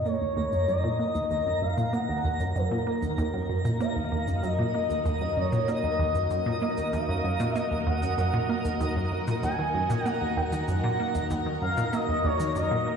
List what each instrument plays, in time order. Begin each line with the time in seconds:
Already playing: string machine D#4 G#4 A#4, synth texture A#4 A#5
0.06 synth arpeggio sound A#3, analog synth lead C#5, shaker
0.21 synth arpeggio sound D#2
0.37 synth arpeggio sound D#2, low woodblock
0.44 string machine D#5
0.52 synth arpeggio sound F#2, shaker
0.68 synth arpeggio sound F#2, analog synth lead D#5, shaker
0.84 synth arpeggio sound A#2
0.99 synth arpeggio sound A#3, string machine F#4
1.15 synth arpeggio sound D#2, low woodblock, shaker
1.30 synth arpeggio sound D#2, shaker
1.46 synth arpeggio sound F#2
1.62 synth arpeggio sound F#2, analog synth lead F5
1.77 synth arpeggio sound A#2, shaker
1.93 synth arpeggio sound A#3, analog synth lead F#5, low woodblock, shaker
2.09 synth arpeggio sound D#2
2.24 synth arpeggio sound D#2
2.40 synth arpeggio sound F#2, shaker
2.56 synth arpeggio sound F#2, analog synth lead A#4, shaker
2.71 synth arpeggio sound A#2, low woodblock
2.87 synth arpeggio sound A#3
3.02 synth arpeggio sound D#2, shaker
3.18 synth arpeggio sound D#2, shaker
3.34 synth arpeggio sound F#2
3.49 synth arpeggio sound F#2, low woodblock
3.65 synth arpeggio sound A#2, shaker
3.80 synth arpeggio sound A#3, analog synth lead F5, shaker
3.96 synth arpeggio sound D#2
4.12 synth arpeggio sound D#2
4.28 synth arpeggio sound F#2, low woodblock, shaker
4.36 analog synth lead F5
4.43 synth arpeggio sound F#2, analog synth lead D#5, synth texture D#6, shaker
4.59 synth arpeggio sound A#2
4.74 synth arpeggio sound A#3
4.90 synth arpeggio sound D#2, shaker
5.05 synth arpeggio sound D#2, low woodblock, shaker
5.21 synth arpeggio sound F#2
5.37 synth arpeggio sound F#2, analog synth lead C#5
5.52 synth arpeggio sound A#2, shaker
5.68 synth arpeggio sound A#3, analog synth lead D#5, shaker
5.84 synth arpeggio sound D#2, low woodblock
5.99 synth arpeggio sound D#2
6.15 synth arpeggio sound F#2, shaker
6.30 synth arpeggio sound F#2, shaker
6.46 synth arpeggio sound A#2
6.62 synth arpeggio sound A#3, analog synth lead D#5, low woodblock
6.77 synth arpeggio sound D#2, shaker
6.93 synth arpeggio sound D#2, analog synth lead F5, shaker
7.09 synth arpeggio sound F#2
7.24 synth arpeggio sound F#2
7.40 synth arpeggio sound A#2, low woodblock, shaker
7.55 synth arpeggio sound A#3, analog synth lead D#5, shaker
7.71 synth arpeggio sound D#2
7.87 synth arpeggio sound D#2, analog synth lead F#5
8.02 synth arpeggio sound F#2, shaker
8.18 synth arpeggio sound F#2, low woodblock, shaker
8.34 synth arpeggio sound A#2
8.49 synth arpeggio sound A#3
8.65 synth arpeggio sound D#2, shaker
8.81 synth arpeggio sound D#2, shaker
8.96 synth arpeggio sound F#2, low woodblock
9.12 synth arpeggio sound F#2
9.27 synth arpeggio sound A#2, shaker
9.43 synth arpeggio sound D#2, analog synth lead G#5, synth texture A#5, shaker
9.59 synth arpeggio sound D#3, low woodblock
9.74 synth arpeggio sound F#2
9.90 synth arpeggio sound A#2, shaker
10.06 synth arpeggio sound A#3, analog synth lead F#5, shaker
10.21 synth arpeggio sound D#2
10.37 synth arpeggio sound D#2, analog synth lead F#5, low woodblock
10.52 synth arpeggio sound D#3, shaker
10.68 synth arpeggio sound F#2, analog synth lead F#5, shaker
10.84 synth arpeggio sound A#2
10.99 synth arpeggio sound A#3
11.15 synth arpeggio sound D#2, low woodblock, shaker
11.31 synth arpeggio sound D#2, shaker
11.46 synth arpeggio sound D#3
11.62 synth arpeggio sound F#2, analog synth lead F5
11.77 synth arpeggio sound A#2, shaker
11.93 synth arpeggio sound A#3, analog synth lead D#5, low woodblock, shaker
12.09 synth arpeggio sound D#2
12.24 synth arpeggio sound D#2, analog synth lead C#5
12.40 synth arpeggio sound D#3, shaker
12.56 synth arpeggio sound F#2, analog synth lead D#5, shaker
12.71 synth arpeggio sound A#2, low woodblock
12.87 synth arpeggio sound A#3